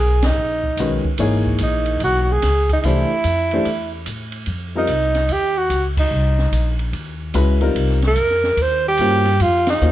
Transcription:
Already playing: upright bass B1
0.00 alto saxophone G#4
0.22 alto saxophone D#4, snare, ride
0.36 upright bass A#1
0.64 kick
0.77 upright bass B1, grand piano D#3 G#3 C#4 F#4 B4, hi-hat pedal, ride
1.04 muted upright bass stroke, kick
1.18 upright bass G#1, grand piano E3 A#3 D#4 G#4 C#5, ride
1.46 kick
1.58 upright bass A#1, alto saxophone D#4, hi-hat pedal, ride
1.86 ride
2.00 upright bass B1, alto saxophone F#4, ride
2.22 alto saxophone F#4
2.32 alto saxophone G#4
2.42 upright bass C#2, snare, hi-hat pedal, ride
2.69 alto saxophone D#4, kick, ride
2.81 upright bass C2, grand piano E3 A3 D4, alto saxophone D#4 E4, ride
2.86 grand piano G4 C5
3.11 muted upright bass stroke
3.24 upright bass F2, hi-hat pedal, ride
3.51 grand piano E3 A3 D4 G4 C5, ride
3.65 upright bass E2, ride
4.06 upright bass A2, hi-hat pedal, ride
4.32 ride
4.46 upright bass F2, ride
4.75 grand piano G3 C4 D#4 F4 A#4, alto saxophone D#4
4.87 upright bass C2, hi-hat pedal, ride
5.15 snare, ride
5.28 upright bass D#2, ride
5.33 alto saxophone G4
5.58 alto saxophone F#4
5.70 upright bass C#2, hi-hat pedal, ride
5.97 alto saxophone D#4, kick, crash
6.11 upright bass C2
6.39 snare
6.52 upright bass A#1, hi-hat pedal, ride
6.79 ride
6.93 upright bass D#2, ride
7.34 upright bass C#2, grand piano G#3 C#4 E4 F#4 B4, hi-hat pedal, ride
7.61 grand piano G3 C4 D#4 F4 A#4, ride
7.75 upright bass C2, ride
7.89 snare
8.02 snare, ride
8.07 alto saxophone A#4
8.16 upright bass F2, hi-hat pedal, ride
8.30 snare
8.44 snare
8.57 upright bass D#2, ride
8.62 alto saxophone C5
8.88 alto saxophone G4
8.98 upright bass G2, grand piano A#3 C#4 F4 F#4 C5, hi-hat pedal, ride
9.25 snare, ride
9.40 upright bass F2, alto saxophone F4, ride
9.67 alto saxophone D#4, snare, ride
9.81 upright bass D#2, grand piano A#3 C#4 F4 F#4 C5, hi-hat pedal

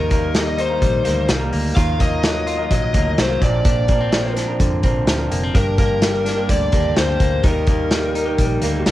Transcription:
Already playing: fingered electric bass D#2, clean electric guitar D#3 A#3 D#4 A#4, lead electric guitar A#4
0.10 clean electric guitar G3 A#3 D#4 A#4, kick, closed hi-hat
0.34 clean electric guitar G3, lead electric guitar D#5, snare, closed hi-hat
0.58 clean electric guitar D#4, lead electric guitar C5, closed hi-hat
0.70 clean electric guitar A#3 D#4 A#4
0.82 fingered electric bass A#1, clean electric guitar G3, kick, closed hi-hat
1.04 fingered electric bass D2, clean electric guitar G3 A#3 D#4 A#4, closed hi-hat
1.29 fingered electric bass C2, clean electric guitar G3, snare, closed hi-hat
1.40 clean electric guitar A#3 D#4 A#4
1.53 fingered electric bass D2, clean electric guitar A#3, open hi-hat
1.75 fingered electric bass D#2, clean electric guitar D#3 F#3 A#3 F4 A#4, lead electric guitar F5, kick, closed hi-hat
1.98 clean electric guitar F#3 A#3 F4 A#4, lead electric guitar D#5, kick, closed hi-hat
2.23 clean electric guitar F#3, snare, closed hi-hat
2.47 clean electric guitar F4, closed hi-hat
2.58 clean electric guitar A#3 F4 A#4
2.70 fingered electric bass A#1, clean electric guitar F#3, lead electric guitar D#5, kick, closed hi-hat
2.94 fingered electric bass D2, clean electric guitar F#3 A#3 F4 A#4, kick, closed hi-hat
3.18 fingered electric bass C2, clean electric guitar F#3, lead electric guitar C5, snare, closed hi-hat
3.29 clean electric guitar A#3 F4 A#4
3.40 fingered electric bass A#1, clean electric guitar A#2 D3 F3 C4 D4 A#4, lead electric guitar D5, kick, closed hi-hat
3.65 clean electric guitar A#2 D4, kick, closed hi-hat
3.87 clean electric guitar F3 A#3 C4 D4 A#4, kick, closed hi-hat
4.00 clean electric guitar C4
4.12 clean electric guitar F3, snare, closed hi-hat
4.36 clean electric guitar D4, snare, closed hi-hat
4.48 clean electric guitar F3 C4 D4 A#4
4.60 fingered electric bass F2, clean electric guitar D3, kick, closed hi-hat
4.82 fingered electric bass A#1, clean electric guitar F3 C4 D4 A#4, kick, closed hi-hat
5.07 fingered electric bass D2, clean electric guitar F3, snare, closed hi-hat
5.18 clean electric guitar F3 C4 D4 A#4
5.31 fingered electric bass F1, clean electric guitar A#3, closed hi-hat
5.43 clean electric guitar C4
5.53 fingered electric bass G1, clean electric guitar G2 G3 A#3 D4 G4, lead electric guitar A#4, kick, closed hi-hat
5.78 clean electric guitar G3 A#3 D4 G4, lead electric guitar A#4, kick, closed hi-hat
6.02 clean electric guitar G3, snare, closed hi-hat
6.26 clean electric guitar D4, snare, closed hi-hat
6.36 clean electric guitar G3 A#3 D4 G4
6.49 fingered electric bass D2, clean electric guitar D3, lead electric guitar D5, kick, closed hi-hat
6.72 fingered electric bass D#2, clean electric guitar G3 A#3 D4 G4, kick, closed hi-hat
6.96 fingered electric bass D2, clean electric guitar G3, lead electric guitar C5, snare, closed hi-hat
7.08 clean electric guitar G3 A#3 D4 G4
7.20 fingered electric bass D2, clean electric guitar A#3, kick, closed hi-hat
7.43 fingered electric bass D#2, clean electric guitar D#3 G3 A#3 D#4 G4, lead electric guitar A#4, kick, closed hi-hat
7.66 clean electric guitar G3 A#3 D#4 G4, kick, closed hi-hat
7.91 clean electric guitar G3, snare, closed hi-hat
8.15 clean electric guitar D#4, closed hi-hat
8.25 clean electric guitar A#3 D#4 G4
8.38 fingered electric bass A#1, clean electric guitar G3, kick, closed hi-hat
8.61 fingered electric bass D2, clean electric guitar G3 A#3 D#4 G4, closed hi-hat
8.86 fingered electric bass C2, clean electric guitar G3, snare, closed hi-hat

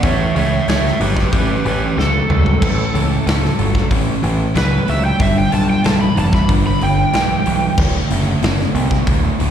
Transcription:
0.02 picked electric bass A1, overdriven electric guitar A2 E3, electric slide guitar C#5 E5, kick, open hi-hat
0.35 picked electric bass C#2, overdriven electric guitar A2 E3, electric slide guitar C#5 E5, open hi-hat
0.67 picked electric bass C#2, overdriven electric guitar A2 F#3, electric slide guitar C#5 E5, snare, open hi-hat
0.86 snare
1.00 picked electric bass G1, overdriven electric guitar A2 F#3, electric slide guitar G4 B4, open hi-hat
1.17 kick, snare
1.32 picked electric bass A1, overdriven electric guitar A2 E3, electric slide guitar G4 B4, kick, open hi-hat
1.64 picked electric bass A1, overdriven electric guitar A2 E3, electric slide guitar G4 B4, open hi-hat
1.97 picked electric bass C#2, overdriven electric guitar A2 F#3, electric slide guitar A4, snare
2.29 picked electric bass C#2, overdriven electric guitar A2 F#3, mid tom
2.46 floor tom
2.61 picked electric bass A1, overdriven electric guitar A2 E3, kick, crash
2.94 picked electric bass C#2, overdriven electric guitar A2 E3, open hi-hat
3.26 picked electric bass C#2, overdriven electric guitar A2 F#3, snare, open hi-hat
3.45 snare
3.58 picked electric bass G1, overdriven electric guitar A2 F#3, open hi-hat
3.75 kick, snare
3.90 picked electric bass A1, overdriven electric guitar A2 E3, kick, open hi-hat
4.22 picked electric bass A1, overdriven electric guitar A2 E3, open hi-hat
4.54 picked electric bass C#2, overdriven electric guitar A2 F#3, electric slide guitar B4, snare, open hi-hat
4.87 picked electric bass C#2, overdriven electric guitar A2 F#3, electric slide guitar E5, open hi-hat
5.05 electric slide guitar G5
5.18 picked electric bass G1, overdriven electric guitar G2 D3, electric slide guitar E5, kick, open hi-hat
5.38 electric slide guitar G5
5.51 picked electric bass B1, overdriven electric guitar G2 D3, electric slide guitar A5, open hi-hat
5.70 electric slide guitar G5
5.83 picked electric bass B1, overdriven electric guitar G2 E3, electric slide guitar A5, snare, open hi-hat
6.01 electric slide guitar B5
6.16 picked electric bass F1, overdriven electric guitar G2 E3, electric slide guitar A5, open hi-hat
6.33 electric slide guitar B5, kick, snare
6.47 picked electric bass G1, overdriven electric guitar G2 D3, kick, open hi-hat
6.67 electric slide guitar B5
6.80 picked electric bass G1, overdriven electric guitar G2 D3, electric slide guitar G5, open hi-hat
7.13 picked electric bass B1, overdriven electric guitar G2 E3, snare, open hi-hat
7.45 picked electric bass B1, overdriven electric guitar G2 E3, open hi-hat
7.78 picked electric bass D1, overdriven electric guitar D2 A2, kick, crash
8.10 picked electric bass F#1, overdriven electric guitar D2 A2, open hi-hat
8.42 picked electric bass F#1, overdriven electric guitar D2 B2, snare, open hi-hat
8.60 snare
8.74 picked electric bass C2, overdriven electric guitar D2 B2, open hi-hat
8.91 kick, snare
9.07 picked electric bass D1, overdriven electric guitar D2 A2, kick, open hi-hat
9.39 picked electric bass D1, overdriven electric guitar D2 A2, open hi-hat

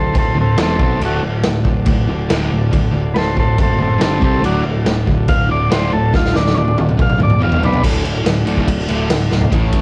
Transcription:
Already playing: picked electric bass D1, distorted electric guitar D2 A2, transistor combo organ A4 C5
0.13 picked electric bass D1, distorted electric guitar D2 A2, kick, crash
0.18 transistor combo organ A4 C5
0.34 distorted electric guitar D2 A2
0.41 transistor combo organ C4 A4
0.56 picked electric bass E1, distorted electric guitar E2 B2 E3, snare, crash
0.63 transistor combo organ C4 A4
0.78 picked electric bass B1, distorted electric guitar B2 F#3 B3, kick
0.82 transistor combo organ C4 A4
0.99 picked electric bass D1, distorted electric guitar D2 A2 D3, transistor combo organ F#4 A4, crash
1.04 transistor combo organ A3 F#4 D5
1.22 picked electric bass D1, distorted electric guitar D2 A2
1.43 picked electric bass D1, distorted electric guitar D2 A2, snare, crash
1.64 picked electric bass D1, distorted electric guitar D2 A2, kick
1.86 picked electric bass D1, distorted electric guitar D2 A2, kick, crash
2.08 distorted electric guitar D2 A2
2.29 picked electric bass D1, distorted electric guitar D2 A2 D3, snare, crash
2.51 picked electric bass D1, distorted electric guitar D2 A2
2.71 picked electric bass D1, distorted electric guitar D2 A2, kick, crash
2.93 picked electric bass D1, distorted electric guitar D2 A2
3.14 picked electric bass D1, distorted electric guitar D2 A2, transistor combo organ A4 B4, snare, crash
3.18 transistor combo organ C5
3.36 picked electric bass D1, distorted electric guitar D2 A2, transistor combo organ A4 C5, kick
3.58 picked electric bass F#1, distorted electric guitar D2 A2, transistor combo organ A4, kick, crash
3.63 transistor combo organ C5
3.78 distorted electric guitar D2 A2, transistor combo organ C4
3.82 transistor combo organ A4
3.98 picked electric bass G1, distorted electric guitar G2 D3 G3, snare, crash
4.03 transistor combo organ C4 A4
4.20 picked electric bass C2, distorted electric guitar C3 G3 C4, kick
4.24 transistor combo organ C4 A4
4.41 picked electric bass D1, distorted electric guitar D2 A2 D3, transistor combo organ D4, crash
4.45 transistor combo organ F#3 D4 F#4 A4
4.64 picked electric bass D1, distorted electric guitar D2 A2
4.85 picked electric bass D1, distorted electric guitar D2 A2, snare, crash
5.06 picked electric bass D1, distorted electric guitar D2 A2, kick
5.28 picked electric bass D1, distorted electric guitar D2 A2, transistor combo organ F5, kick, crash
5.49 distorted electric guitar D2 A2, transistor combo organ D5
5.70 picked electric bass D1, distorted electric guitar D2 A2 D3, transistor combo organ C5, snare, crash
5.92 picked electric bass D1, distorted electric guitar D2 A2, transistor combo organ A4
6.13 picked electric bass D1, distorted electric guitar D2 A2, transistor combo organ F4, kick, snare
6.26 snare
6.34 picked electric bass D1, distorted electric guitar D2 A2, transistor combo organ D4, snare
6.47 snare
6.54 picked electric bass D1, distorted electric guitar D2 A2, transistor combo organ C#4 D4, high tom
6.68 high tom
6.77 picked electric bass D1, distorted electric guitar D2 A2, high tom
6.89 mid tom
6.97 picked electric bass D1, distorted electric guitar D2 A2, kick, mid tom
7.02 transistor combo organ F5
7.10 mid tom
7.19 distorted electric guitar D2 A2, mid tom
7.23 transistor combo organ D5
7.30 mid tom
7.39 picked electric bass E1, distorted electric guitar E2 B2 E3, mid tom
7.43 transistor combo organ F5
7.52 floor tom
7.61 picked electric bass B1, distorted electric guitar B2 F#3 B3, transistor combo organ D4, floor tom
7.66 transistor combo organ B4
7.73 floor tom
7.82 picked electric bass D1, distorted electric guitar D2 A2 D3, transistor combo organ D4 F#4, kick, crash
7.86 transistor combo organ A4
8.04 picked electric bass D1, distorted electric guitar D2 A2, crash
8.23 picked electric bass D1, distorted electric guitar D2 A2, snare, crash
8.45 picked electric bass D1, distorted electric guitar D2 A2 D3, crash
8.57 kick
8.67 picked electric bass D1, distorted electric guitar D2 A2, kick, crash
8.88 picked electric bass D1, distorted electric guitar D2 A2 D3, crash
9.09 picked electric bass D1, distorted electric guitar D2 A2, snare, crash
9.30 picked electric bass D1, distorted electric guitar D2 A2, snare
9.41 floor tom
9.49 picked electric bass A1, distorted electric guitar A2 E3, transistor combo organ C#4 E4, kick, ride
9.54 distorted electric guitar A3, transistor combo organ A4
9.72 picked electric bass A1, kick, ride

